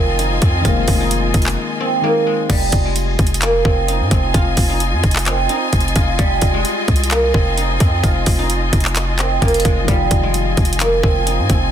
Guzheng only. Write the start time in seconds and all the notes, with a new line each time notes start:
Already playing: G3 G#3 A#3 C4 D#4 F4
0.19 D#4
0.42 C4
0.65 F4
1.00 D#4
1.80 C4
2.04 A#3
2.27 G#3
2.50 G3
2.85 G#3
3.42 A#3
3.65 C4
3.88 D#4
4.11 C4
4.34 F4
4.70 D#4
5.26 C4
5.50 D#4
5.96 F4
6.19 G3
6.54 G#3
7.11 A#3
7.34 C4
7.57 D#4
7.80 C4
8.03 F4
8.39 D#4
9.19 C4
9.42 A#3
9.65 G#3
9.88 G3
10.23 G#3
10.80 A#3
11.03 C4
11.26 D#4
11.49 C4